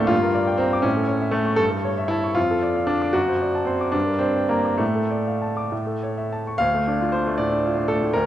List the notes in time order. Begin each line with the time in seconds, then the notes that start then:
Already playing: D2 A3 A#3 C4 D4 A4 D5 F5 A5 D6 F6
0.00 A2
0.07 G2 F4
0.22 A#4
0.34 D5
0.47 G5
0.58 C4 A#5
0.73 D6
0.82 A2 C#4
0.96 A4
1.07 C#5
1.21 E5
1.31 A3 A5
1.45 C#6
1.56 G2 A4
1.71 A4
1.84 C#5
1.98 E5
2.08 E4 A5
2.24 C#6
2.35 F2 F4
2.51 A4
2.63 D5
2.76 F5
2.87 D4 A5
3.02 D6
3.13 F#2 F#4
3.28 C5
3.42 D5
3.55 A5
3.65 C4 C6
3.81 D6
3.92 G2 D4
4.06 A#4
4.19 C4 D5
4.36 G5
4.49 A#3 A#5
4.65 D6
4.77 A2 A3
4.95 A4
5.11 D5
5.27 F5
5.42 A5
5.57 D6
5.72 A2
5.87 A4
6.03 C#5
6.17 E5
6.32 A5
6.47 C#6
6.58 D2 F5
6.74 A3
6.88 D4
7.01 F4
7.12 D4 C5
7.27 A3
7.38 A2 D5
7.52 D4
7.65 F4
7.78 D4
7.88 A3 A4
8.02 A2
8.13 D2 A#4